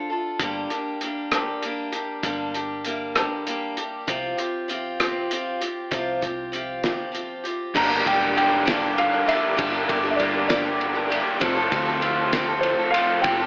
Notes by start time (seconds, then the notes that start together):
Already playing: F4
0.10 D4 F4 A4
0.39 G1 G2 D3 G3 A#3 D4 G4, kick, closed hi-hat
0.70 G3 A#3 D4 G4, closed hi-hat
1.01 G3 A#3 D4 G4, closed hi-hat
1.32 G2 D3 G3 A#3 D4 G4, cross-stick, closed hi-hat
1.63 G3 A#3 D4 G4, closed hi-hat
1.92 G3 A#3 D4 G4, closed hi-hat
2.23 G1 G2 D3 G3 A#3 D4 G4, kick, closed hi-hat
2.54 G3 A#3 D4 G4, closed hi-hat
2.85 G3 A#3 D4 G4, closed hi-hat
3.15 G2 D3 G3 A#3 D4 G4, cross-stick, closed hi-hat
3.47 G3 A#3 D4 G4, closed hi-hat
3.77 G3 A#3 D4 G4, closed hi-hat
4.07 C2 C3 F3 C4 F4 G4, kick, closed hi-hat
4.37 C4 F4 G4, closed hi-hat
4.68 F3 C4 F4 G4, closed hi-hat
5.00 C3 F3 C4 F4 G4, cross-stick, closed hi-hat
5.31 F3 C4 F4 G4, closed hi-hat
5.61 C4 F4 G4, closed hi-hat
5.91 C2 C3 F3 C4 F4 G4, kick, closed hi-hat
6.21 C4 F4 G4, kick, closed hi-hat
6.52 F3 C4 F4 G4, closed hi-hat
6.83 C3 F3 C4 F4 G4, snare, closed hi-hat
7.12 F3 C4 F4 G4, closed hi-hat
7.44 C4 F4 G4, closed hi-hat
7.74 G1 G2 D3 G3 A#3 D4 G4 A#4 D5 A#5, kick, crash
7.88 G3 A#3 D4 G4
8.05 E1 G3 A#3 D4 G4 G5, kick, ride
8.21 G3 A#3 D4 G4
8.35 G3 A#3 D4 G4 G5, ride
8.65 G2 D3 G3 A#3 D4 G4, snare, ride
8.81 G3 A#3 D4 G4
8.98 F5, ride
9.12 G3 A#3 D4 G4
9.26 G3 A#3 D4 G4 E5, ride
9.56 G1 G2 D3 G3 A#3 D4 G4, kick, ride
9.72 G3 A#3 D4 G4
9.88 G1 G3 A#3 D4 G4, kick, ride
10.03 G3 A#3 D4 G4
10.11 E5
10.16 G1 G3 A#3 D4 D5, ride
10.21 G4
10.48 G2 D3 G3 A#3 D4 G4 D5, snare, ride
10.63 G3 A#3 D4 G4
10.81 ride
10.94 G3 A#3 D4 G4
11.09 G3 A#3 D4 G4, ride
11.13 G3
11.40 F1 F2 C3 F3 A3 C4 F4 G4 A4 C5 F5 A5, kick, ride
11.56 C4 G4 A4
11.71 D2 F3 A3 C4 F4, kick, ride
11.85 C4 G4 A4
12.01 F3 A3 C4 F4 G4 A4, ride
12.32 F2 C3 F3 A3 C4 F4 G4 A4, snare, ride
12.48 C4 G4 A4
12.61 C5, ride
12.78 C4 G4 A4
12.91 F3 F4 F5, ride
12.95 A3 C4 G4 A4
13.22 F1 F2 C3 F3 A3 C4 G4 A4 G5, kick, ride
13.26 F4
13.40 C4 G4 A4